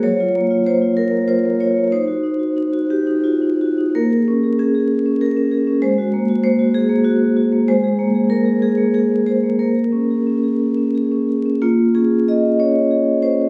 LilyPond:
\new Staff \with { instrumentName = "Vibraphone" } { \time 6/8 \key bes \minor \tempo 4. = 63 << { des''4 c''8 bes'8 c''8 des''8 | c''4. g'8 f'4 | bes'4 aes'4 bes'4 | c''4 c''8 aes'8 ges'4 |
c''4 bes'8 aes'8 aes'8 c''8 | bes'4. r4. | f'8 aes'8 ees''8 des''4 c''8 | } \\ { ges16 f'16 bes16 f'16 bes16 f'8 bes16 f'16 bes16 f'16 bes16 | ees'16 ges'16 ees'16 ges'16 ees'16 ges'8 ees'16 ges'16 ees'16 ges'16 ees'16 | bes16 aes'16 des'16 aes'16 des'16 aes'8 des'16 aes'16 des'16 aes'16 des'16 | aes16 ges'16 bes16 ges'16 bes16 ges'8 bes8 bes16 ges'16 bes16 |
aes16 aes'16 bes16 aes'16 bes16 aes'8 bes8 bes16 aes'16 bes16 | bes16 aes'16 des'16 aes'16 des'16 aes'8 des'16 aes'16 des'16 aes'16 des'16 | bes8 des'8 aes'8 des'8 aes'8 des'8 | } >> }